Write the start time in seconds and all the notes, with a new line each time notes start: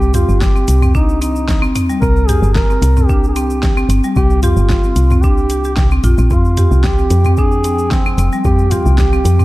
Already playing: C2 G4
0.02 cabasa
0.14 F4 G4, closed hi-hat, mid tom, cabasa
0.29 G1, cabasa
0.41 G4, kick, snare, cabasa
0.56 C4, cabasa
0.68 C2, closed hi-hat, cabasa
0.82 C4, mid tom, cabasa
0.95 D4 D#4, kick, cabasa
1.09 cabasa
1.21 C4 D#4, closed hi-hat, cabasa
1.36 cabasa
1.48 kick, snare, cabasa
1.62 C4, cabasa
1.75 C4, closed hi-hat, mid tom, cabasa
1.89 G3, cabasa
2.02 C2 C4 A#4, kick, cabasa
2.16 cabasa
2.27 G4 G#4, closed hi-hat, mid tom, cabasa
2.42 G1, cabasa
2.53 A#4, kick, snare, cabasa
2.70 C4, cabasa
2.82 C2, closed hi-hat, cabasa
2.97 C4, mid tom, cabasa
3.06 D4 G4, kick, cabasa
3.24 cabasa
3.29 G#4
3.33 C4 G4, closed hi-hat, cabasa
3.50 cabasa
3.63 kick, snare, cabasa
3.77 C4, cabasa
3.89 G1 C4, closed hi-hat, cabasa
4.04 G3, cabasa
4.16 C2 C4 G4, kick, cabasa
4.30 cabasa
4.43 F4 G4, closed hi-hat, mid tom, cabasa
4.57 G1, cabasa
4.70 kick, snare, cabasa
4.84 C4, cabasa
4.96 C2, closed hi-hat, cabasa
5.10 C4, mid tom, cabasa
5.22 D4 G4, kick, cabasa
5.37 cabasa
5.50 G4, closed hi-hat, cabasa
5.64 G4, cabasa
5.77 C2, kick, snare, cabasa
5.91 C4, cabasa
6.04 A#1 F4, closed hi-hat, mid tom, cabasa
6.18 A#1 C4, cabasa
6.31 F2 F3 C4 F4 G5, kick, cabasa
6.45 cabasa
6.57 G4, closed hi-hat, mid tom, cabasa
6.71 C2, cabasa
6.84 G4, kick, snare, cabasa
6.98 C4, cabasa
7.10 F2, closed hi-hat, cabasa
7.25 C4, mid tom, cabasa
7.37 D4 G#4, kick, cabasa
7.52 cabasa
7.64 C4, closed hi-hat, cabasa
7.79 cabasa
7.91 C4, kick, snare, cabasa
8.06 C4, cabasa
8.18 F1 C4, closed hi-hat, cabasa
8.32 G3, cabasa
8.45 F2 C4 G4, kick, cabasa
8.59 cabasa
8.71 F4 G4, closed hi-hat, mid tom, cabasa
8.86 C2, cabasa
8.98 G4, kick, snare, cabasa
9.13 C4, cabasa
9.25 F2, closed hi-hat, cabasa
9.39 C4, mid tom, cabasa